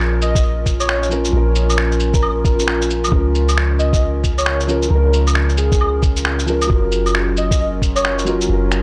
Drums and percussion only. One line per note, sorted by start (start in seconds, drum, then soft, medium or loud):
0.00 finger snap loud
0.22 cabasa medium
0.35 kick loud
0.35 shaker medium
0.66 kick medium
0.66 cabasa medium
0.66 shaker soft
0.80 claves soft
0.80 shaker medium
0.89 finger snap loud
1.03 shaker soft
1.11 cabasa medium
1.25 shaker medium
1.55 cabasa medium
1.70 claves medium
1.70 shaker medium
1.78 finger snap loud
1.92 shaker soft
2.00 cabasa medium
2.14 kick loud
2.14 shaker medium
2.23 claves medium
2.45 kick loud
2.45 cabasa medium
2.45 shaker soft
2.59 shaker medium
2.68 finger snap loud
2.82 shaker soft
2.90 cabasa medium
3.04 claves medium
3.04 shaker medium
3.12 kick loud
3.35 cabasa medium
3.49 claves medium
3.49 shaker medium
3.58 finger snap loud
3.80 cabasa medium
3.93 kick loud
3.93 shaker medium
4.24 kick medium
4.24 cabasa medium
4.24 shaker soft
4.38 claves medium
4.38 shaker medium
4.46 finger snap loud
4.60 shaker soft
4.69 cabasa medium
4.82 shaker medium
5.13 cabasa medium
5.27 claves medium
5.27 shaker medium
5.35 finger snap loud
5.49 shaker soft
5.58 cabasa medium
5.72 kick loud
5.72 shaker medium
5.81 claves medium
6.03 kick loud
6.03 cabasa medium
6.03 shaker soft
6.17 shaker medium
6.25 finger snap loud
6.39 shaker soft
6.48 cabasa medium
6.62 claves medium
6.62 shaker medium
6.70 kick loud
6.92 cabasa medium
7.06 claves medium
7.06 shaker medium
7.15 finger snap loud
7.37 cabasa medium
7.51 kick loud
7.51 shaker medium
7.82 kick medium
7.82 cabasa medium
7.82 shaker soft
7.96 claves medium
7.96 shaker medium
8.05 finger snap loud
8.19 shaker soft
8.27 cabasa medium
8.41 shaker medium
8.72 finger snap medium
8.72 cabasa medium